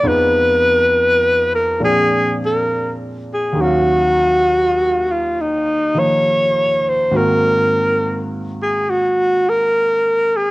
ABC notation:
X:1
M:4/4
L:1/8
Q:"Swing" 1/4=68
K:Eblyd
V:1 name="Alto saxophone"
_c3 B _A B z A | _G3 F E _d2 c | B2 z _A _G B2 A |]
V:2 name="Grand piano" clef=bass
[F,,F,_A,_CE]4 [B,,F,A,=CD]4 | [E,,E,_G,_Df]4- [E,,E,G,Df] [E,F,B,E]3 | [_A,,E,B,C_G]8 |]